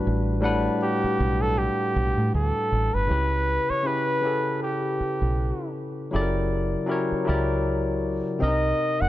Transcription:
Already playing: tine electric piano A2 G3 D4 F#4 B4
0.07 fingered electric bass A1
0.41 tine electric piano A2 G3 D4 F#5
0.45 tine electric piano B4
0.83 flugelhorn G4
1.04 muted fingered electric bass stroke
1.20 fingered electric bass B1
1.42 flugelhorn A4
1.58 flugelhorn G4
1.96 fingered electric bass B1
2.17 fingered electric bass A2
2.34 fingered electric bass D2, flugelhorn A4
2.72 fingered electric bass A1
2.94 fingered electric bass G1, flugelhorn B4
3.07 fingered electric bass C#2, tine electric piano C#3 C#4 E4 G4
3.12 tine electric piano B4
3.70 flugelhorn C#5, muted fingered electric bass stroke
3.83 tine electric piano C#3 C#4 E4 G4, flugelhorn B4
3.88 tine electric piano B4
4.21 tine electric piano C#3 C#4 E4 G4
4.26 tine electric piano A4
4.62 flugelhorn G4
5.00 muted fingered electric bass stroke
5.22 fingered electric bass B1
6.11 fingered electric bass F#1, tine electric piano C#3 F#3 E4 G4 A4
6.16 tine electric piano D5
6.22 tine electric piano A#4
6.86 tine electric piano F#3 C#4 E4 G4 A#4
6.91 tine electric piano C#5
7.12 muted fingered electric bass stroke
7.25 tine electric piano C#3 F#3 E4 G4
7.29 fingered electric bass C#2, tine electric piano A#4 D5
8.39 fingered electric bass C2, tine electric piano C3 C4 D4 A#4, flugelhorn D#5
8.44 tine electric piano D#5
8.48 tine electric piano D#4
9.01 fingered electric bass F1, flugelhorn F#5

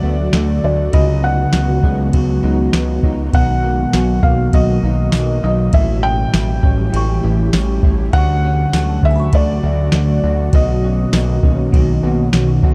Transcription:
Already playing: ambient pad D3 F#3 A3 F#4, clean electric guitar D3 F#3 A3, felt piano D5
0.03 analog synth bass D2, clean electric guitar B3
0.33 analog synth bass D2, clean electric guitar A3, snare, ride, tambourine
0.64 analog synth bass D2, felt piano D5
0.93 analog synth bass C#2, clean electric guitar C#3 D#4, ambient pad D#3 G#3 B3, felt piano D#5, kalimba B5, kick, ride
1.22 clean electric guitar B3, felt piano F#5
1.52 analog synth bass C#2, clean electric guitar F#3, snare, ride, tambourine
1.83 analog synth bass C#2, clean electric guitar B3, kick
2.13 analog synth bass C#2, clean electric guitar F#3, kick, ride
2.43 analog synth bass C#2, clean electric guitar D#4
2.73 analog synth bass C#2, clean electric guitar B3, snare, ride, tambourine
3.03 analog synth bass C#2, clean electric guitar D#4, kick
3.33 analog synth bass B1, ambient pad B2 F#3 A#3, clean electric guitar B2 D#4, felt piano F#5, kick, ride
3.64 clean electric guitar A#3
3.93 analog synth bass B1, clean electric guitar F#3, kalimba G#5, snare, ride, tambourine
4.23 analog synth bass B1, clean electric guitar A#3, felt piano F5, kick
4.53 analog synth bass B1, clean electric guitar F#3, felt piano D#5, kick, ride
4.83 analog synth bass B1, clean electric guitar D#4
5.12 analog synth bass B1, clean electric guitar A#3, snare, ride, tambourine
5.43 analog synth bass B1, clean electric guitar D#4, felt piano D#5
5.73 analog synth bass A1, clean electric guitar A2 E4, ambient pad E3 G3 A3 G4, felt piano E5, kick, ride
6.03 clean electric guitar C#4, felt piano G5
6.33 analog synth bass A1, clean electric guitar G3, snare, ride, tambourine
6.63 analog synth bass A1, clean electric guitar C#4, kick
6.92 analog synth bass A1, clean electric guitar E3, ride
6.96 kalimba C#6
7.24 analog synth bass A1, clean electric guitar E4
7.53 analog synth bass A1, clean electric guitar C#4, snare, ride, tambourine
7.83 analog synth bass A1, clean electric guitar E4, kick
8.13 analog synth bass D2, clean electric guitar D3 F#4, ambient pad D3 F#3 F#4, felt piano F#5, kick, ride
8.18 kalimba C#6
8.44 clean electric guitar C#4
8.73 analog synth bass D2, clean electric guitar A3, snare, ride, tambourine
9.03 analog synth bass D2, felt piano E5, kick
9.11 kalimba G#5
9.16 kalimba B5 C#6
9.33 analog synth bass D2, clean electric guitar A3, felt piano D5, kick, ride
9.63 analog synth bass D2, clean electric guitar F#4
9.92 analog synth bass D2, snare, ride, tambourine
10.23 analog synth bass D2, clean electric guitar F#4
10.51 analog synth bass B1, ambient pad B2 D#3 A#3, clean electric guitar B2 F#4, felt piano D#5, kick, ride
10.84 clean electric guitar C#4
11.13 analog synth bass B1, clean electric guitar A#3, snare, ride, tambourine
11.43 analog synth bass B1, clean electric guitar C#4, kick
11.72 analog synth bass B1, clean electric guitar D#3, kick, ride
12.03 analog synth bass B1, clean electric guitar F#4
12.33 analog synth bass B1, clean electric guitar C#4, snare, ride, tambourine
12.63 analog synth bass B1, clean electric guitar F#4, kick

